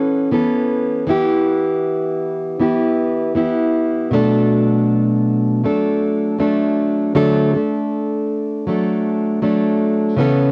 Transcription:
Already playing: E3 B3 C#4 A4
0.31 E3 B3 C#4 A4
1.07 E3 B3 E4 G4
2.60 E3 B3 E4 G4
3.35 E3 B3 E4 G4
4.11 B2 F#3 A3 D4 A4
5.64 F#3 A3 D4 A4
6.38 F#3 A3 D4 A4
7.15 D3 F#3 A3 D4 A4
7.54 A3 D4 A4
8.67 F#3 A3 D4 A4
9.42 F#3 A3 D4 A4
10.17 C#3 E3 B3 C#4 A4

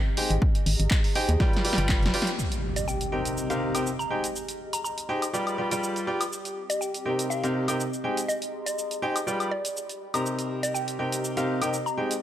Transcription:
Already playing: C4 G4 D#5
0.17 G#3 D#4 G4 G#4 C5 G5, open hi-hat
0.30 G#1, closed hi-hat
0.42 kick
0.55 A#5, closed hi-hat
0.66 G#1, open hi-hat
0.73 C6
0.80 G#1, closed hi-hat
0.91 kick, clap
1.04 open hi-hat
1.15 D#4 G4 G#4 C5 G5, open hi-hat
1.29 D#2, closed hi-hat
1.40 G3 F4 G4 B4 D5 G5, kick, snare
1.53 snare, closed hi-hat
1.65 G3 F4 G4 B4 D5 G5 B5, open hi-hat
1.73 snare
1.78 G1 G3 F4 G4 B4 D5 G5, closed hi-hat
1.85 G5
1.89 kick, snare, clap
2.03 F1, snare, closed hi-hat
2.14 F4 G4 B4 D5 G5, open hi-hat
2.22 snare
2.27 closed hi-hat
2.38 C4, impact, shaker
2.52 closed hi-hat, shaker
2.56 D#5
2.76 D#5, closed hi-hat, shaker
2.88 G5, shaker
3.01 closed hi-hat, shaker
3.12 C3 D#4 G4 A#4 C5 G5
3.25 closed hi-hat, shaker
3.38 shaker
3.50 C3 D#4 G4 A#4 C5 F5, closed hi-hat, shaker
3.75 C3 D#4 G4 A#4 C5 G5, closed hi-hat, high woodblock, shaker
3.87 shaker
3.99 A#5, shaker
4.10 G#3 D#4 G4 G#4 C5 G5
4.24 closed hi-hat, shaker
4.36 A#5, shaker
4.49 closed hi-hat, shaker
4.66 C6
4.73 A#5, closed hi-hat, shaker
4.84 A#5, shaker
4.98 closed hi-hat, shaker
5.09 D#4 G4 G#4 C5 G5
5.22 closed hi-hat, high woodblock, shaker
5.34 G3 F4 G4 B4 D5 G5, shaker
5.43 D5, closed hi-hat, high woodblock
5.48 G5, shaker
5.58 G3 F4 G4 B4 D5 G5
5.71 G3 F4 G4 B4 D5 G5, closed hi-hat, shaker
5.84 shaker
5.96 closed hi-hat, shaker
6.07 F4 G4 B4 D5 G5
6.21 closed hi-hat, high woodblock, shaker
6.32 C4, shaker
6.45 closed hi-hat, shaker
6.70 D#5, closed hi-hat, shaker
6.81 G5, shaker
6.87 D#5
6.94 closed hi-hat, shaker
7.06 C3 D#4 G4 A#4 C5 G5
7.19 closed hi-hat, shaker
7.30 F5, shaker
7.43 C3 D#4 G4 A#4 C5 F5, closed hi-hat, shaker
7.68 C3 D#4 G4 A#4 C5 G5, closed hi-hat, high woodblock, shaker
7.80 shaker
7.94 shaker
8.04 G#3 D#4 G4 G#4 C5 G5
8.17 C6, closed hi-hat, shaker
8.28 D#5 A#5, shaker
8.42 closed hi-hat, shaker
8.66 D#5, closed hi-hat, shaker
8.79 shaker
8.91 closed hi-hat, shaker
9.02 D#4 G4 G#4 C5 G5
9.16 closed hi-hat, high woodblock, shaker
9.27 G3 F4 G4 B4 D5 G5, shaker
9.40 closed hi-hat, high woodblock, shaker
9.50 D5
9.65 closed hi-hat, shaker
9.72 G5
9.77 shaker
9.89 closed hi-hat, shaker
10.14 C3 D#4 G4 A#4 C5 A#5, closed hi-hat, high woodblock, shaker
10.25 C4, shaker
10.39 closed hi-hat, shaker
10.47 D#5
10.63 D#5, closed hi-hat, shaker
10.74 G5, shaker
10.88 closed hi-hat, shaker
10.99 C3 D#4 G4 A#4 C5 G5
11.12 closed hi-hat, shaker
11.24 shaker
11.37 C3 D#4 G4 A#4 C5 F5, closed hi-hat, shaker
11.62 C3 D#4 G4 A#4 C5 G5, closed hi-hat, high woodblock, shaker
11.74 shaker
11.86 A#5, shaker
11.97 G#3 D#4 G4 G#4 C5 G5
12.11 A#5, closed hi-hat, shaker

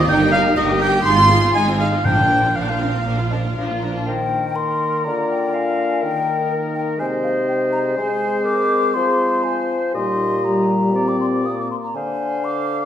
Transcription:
0.07 G1 G3 D#4 A#4 G5
0.18 A#3 G4
0.31 G3 D#4 A#4 F5
0.44 A#3 G4
0.56 G1 G3 D#4 G4 A#4 D#5
0.69 A#3 G4
0.81 G3 D#4 A#4 G5
0.92 A#3 G4
1.04 G#1 G#3 D#4 F4 G#4 C6
1.17 C4 F4
1.30 G#3 D#4 G#4
1.42 C4 F4
1.54 G#1 G#3 D#4 G#4 G#5
1.67 C4 F4
1.79 G#3 D#4 G#4 F5
1.92 C4 F4
2.05 A#1 A#2 F3 D4 A#4 G5
2.19 A#3 F4
2.30 F3 D4 A#4
2.43 A#3 F4
2.55 A#1 F3 D4 A#4 F5
2.63 G5
2.67 A#3 F4 F5
2.80 F3 C4 D4 A#4
2.92 A#3 F4
3.05 A#1 F3 A#3 D4 A#4
3.17 A#3 F4
3.30 F3 D4 A#4 D#5
3.44 A#3 F4
3.55 A#1 F3 D4 F4 A#4 F5
3.68 A#3 F4
3.81 F3 D4 A#4
3.94 A#3 D4 F4
4.06 D#3 A#3 D#4 A#4 C5 G5
4.56 A#4 C6
5.04 D3 F4 D5 A#5
5.29 G5
5.54 F5 G#5
6.02 D#3 D#4 A#4 G5
6.51 A#4
6.75 G5
6.98 C3 G#3 C5 D#5 G#5
7.24 F5
7.49 G5
7.72 A#5
7.97 G#3 C4 C5 G#5
8.44 A#4 D6
8.94 F3 G#4 C6
9.43 C5 G#5
9.93 A#2 G3 D#4 G4 D#5 C6
10.44 G3 A#5
10.93 C4 D5
11.08 D6
11.20 C6
11.34 D6
11.44 A#3 D#6
11.59 D6
11.71 C6
11.84 A#5
11.95 D3 C5 F5 G#5
12.44 D6

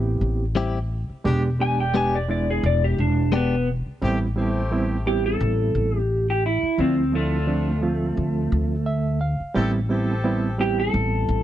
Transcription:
Already playing: A1 B3 C4 E4 G4
0.21 A1
0.55 G3 C4 E4 G4
1.10 muted upright bass stroke
1.24 E1 G#3 B3 D4 G4
1.59 G#3 B3 D4 G4 G#5
1.80 G5
1.94 G#3 B3 D4 G4 G#5
2.15 D5
2.28 G#3 B3 D4 E4 D5
2.50 G#4
2.63 E1 D5
2.84 G4
2.98 E1 D4
3.32 G#3 B3 D4 G4
3.87 muted upright bass stroke
4.02 A1 G3 A3 B3 C4 E4 G4
4.36 G3 A3 B3 C4 E4 G4
4.71 G3 B3 C4 E4
5.06 G3 B3 C4 E4 G4
5.26 A4
5.41 A1
5.75 A1
5.98 G4
6.30 G4
6.46 E4
6.63 muted upright bass stroke
6.78 D2 F3 A3 C4 D4 E4 F4
7.12 F3 A3 C4 D4 E4 F4
7.47 F3 A3 C4 D4
7.82 F3 A3 C4 F4
8.17 D2
8.52 D2
8.86 E5
9.21 F5
9.40 muted upright bass stroke
9.54 A1 G3 B3 C4 E4 G4 A4
9.89 G3 B3 C4 E4 G4 A4
10.24 G3 B3 C4 E4
10.58 G3 B3 C4 E4 G4
10.80 A4
10.94 A1
11.29 A1

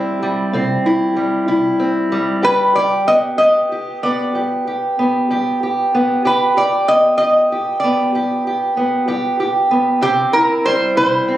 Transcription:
Already playing: C3 G3 C4 E4
0.23 G3
0.53 C3 C4
0.86 E4
1.16 G3
1.48 C3 E4
1.80 C4
2.12 G3
2.42 G2 G4 B4
2.75 G4 D5
3.08 B3 D#5
3.38 G2 G4 D#5
3.72 G4
4.03 B3 D5
4.35 G2 G4
4.67 G4
4.99 B3
5.30 G2 G4
5.63 G4
5.95 B3
6.25 G2 G4 B4
6.57 G4 D5
6.88 B3 D#5
7.18 G2 G4 D#5
7.52 G4
7.80 B3 D5
8.15 G2 G4
8.47 G4
8.77 B3
9.08 G2 G4
9.40 G4
9.71 B3
10.01 C3 C4 G4
10.33 E4 A#4
10.66 G3 C5
10.97 C3 E4 C5
11.28 C4

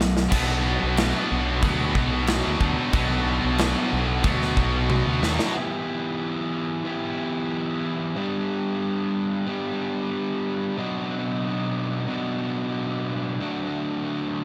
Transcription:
Already playing: B1
0.00 B2 F#3, snare
0.17 snare
0.31 B1 B2 F#3 B3 D4, kick, crash
0.83 B1
0.97 snare, crash
1.32 B1
1.61 D2 B2 F#3 B3, kick, crash
1.95 B1, kick
2.27 snare, crash
2.47 D2
2.60 D2 B2 F#3 B3 D4, kick
2.92 B1 B2 F#3 B3 D4, kick, crash
3.44 B1
3.58 snare, crash
3.93 B1
4.22 D2 B2 F#3 B3, kick, crash
4.42 snare
4.57 B1, kick
4.90 high tom
5.06 D2
5.22 D#2 B2 F#3 B3 D4, snare
5.39 snare
5.55 E3 B3 E4 G4
6.85 E3 B3 E4 G4
8.16 G3 B3 D4 G4
9.46 G3 B3 D4 G4
10.77 B2 F#3 B3 D4 F#4
12.08 B2 F#3 B3 D4 F#4
13.40 D3 F#3 A3 D4 F#4

